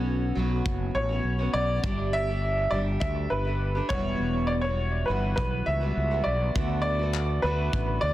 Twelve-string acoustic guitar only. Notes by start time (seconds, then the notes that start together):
Already playing: B3 C#4 F#4
0.35 F#3 B3 C#4 F#4
1.09 B3 C#4 F#4
1.39 B3 C#4 F#4
1.83 G3 A3 D4 G4
2.27 A3 D4 G4
2.71 G3 A3 D4 G4
3.45 A3 D4 G4
3.75 A3 D4 G4
3.90 E2 B2 E3 G3 B3 F#4
4.63 E3 G3 B3 F#4
5.08 E3 G3 B3 F#4
5.81 E3 G3 B3 F#4
6.11 E3 G3 B3 F#4
6.55 D3 A3 B3 F#4
6.99 A3 B3 F#4
7.43 D3 A3 B3 F#4